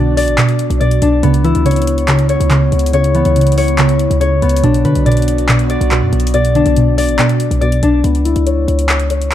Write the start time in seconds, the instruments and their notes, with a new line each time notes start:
Already playing: 808-style bass B1, synth pluck B2 D3, harp B3 D4 D5, ambient pad B3 F#4 D5
0.17 harp D5, open hi-hat
0.27 808-style bass A1, closed hi-hat
0.38 synth pluck B2, clap, closed hi-hat
0.49 closed hi-hat
0.59 closed hi-hat
0.70 808-style bass B1, closed hi-hat
0.80 synth pluck B2, harp D5, closed hi-hat
0.91 closed hi-hat
1.02 808-style bass B1, harp D4, closed hi-hat
1.23 808-style bass C#2, ambient pad C#3 B3 E4, synth pluck C#3, harp B3, closed hi-hat
1.34 closed hi-hat
1.44 synth pluck E3, harp E4, closed hi-hat
1.55 808-style bass C#2, closed hi-hat
1.65 synth pluck C#3, harp C#5, closed hi-hat
1.71 closed hi-hat
1.76 closed hi-hat
1.82 closed hi-hat
1.87 closed hi-hat
1.98 closed hi-hat
2.08 synth pluck C#3, clap, closed hi-hat
2.19 closed hi-hat
2.29 harp C#5, closed hi-hat
2.40 808-style bass C#2, closed hi-hat
2.50 synth pluck C#3, clap, closed hi-hat
2.72 808-style bass C#2, closed hi-hat
2.79 closed hi-hat
2.86 closed hi-hat
2.93 synth pluck C#3, harp C#5, closed hi-hat
3.04 closed hi-hat
3.15 synth pluck E3, harp B3, closed hi-hat
3.25 808-style bass C#2, closed hi-hat
3.36 synth pluck C#3, closed hi-hat
3.41 closed hi-hat
3.47 closed hi-hat
3.52 closed hi-hat
3.58 harp C#5, open hi-hat
3.68 closed hi-hat
3.78 synth pluck C#3, clap, closed hi-hat
3.89 closed hi-hat
3.99 closed hi-hat
4.10 808-style bass C#2, closed hi-hat
4.21 synth pluck C#3, harp C#5, closed hi-hat
4.42 808-style bass C#2, harp B3, closed hi-hat
4.49 closed hi-hat
4.57 closed hi-hat
4.63 808-style bass B1, synth pluck B2, ambient pad B3 F#4 D5, harp D4, closed hi-hat
4.74 closed hi-hat
4.85 808-style bass B2, synth pluck D3, harp B4, closed hi-hat
4.95 808-style bass B1, closed hi-hat
5.06 synth pluck B2, harp D5, closed hi-hat
5.12 closed hi-hat
5.17 closed hi-hat
5.22 closed hi-hat
5.28 closed hi-hat
5.38 closed hi-hat
5.49 synth pluck B2, clap, closed hi-hat
5.59 closed hi-hat
5.70 harp D5, closed hi-hat
5.81 808-style bass B1, closed hi-hat
5.91 synth pluck B2, clap, closed hi-hat
6.02 808-style bass F#2
6.13 808-style bass B1, closed hi-hat
6.20 closed hi-hat
6.27 closed hi-hat
6.34 synth pluck B2, harp D5, closed hi-hat
6.45 closed hi-hat
6.55 synth pluck D3, harp D4, closed hi-hat
6.66 808-style bass B1, closed hi-hat
6.76 synth pluck B2, closed hi-hat
6.98 harp D5, open hi-hat
7.08 808-style bass A1, closed hi-hat
7.19 synth pluck B2, clap, closed hi-hat
7.29 closed hi-hat
7.40 closed hi-hat
7.51 808-style bass B1, closed hi-hat
7.61 synth pluck B2, harp D5, closed hi-hat
7.72 closed hi-hat
7.83 808-style bass B1, harp D4, closed hi-hat
8.04 808-style bass C#2, harp B3, closed hi-hat
8.15 closed hi-hat
8.25 harp E4, closed hi-hat
8.36 808-style bass C#2, closed hi-hat
8.47 harp C#5, closed hi-hat
8.68 808-style bass C#2, closed hi-hat
8.79 closed hi-hat
8.89 clap, closed hi-hat
9.00 closed hi-hat
9.10 harp C#5, closed hi-hat
9.22 closed hi-hat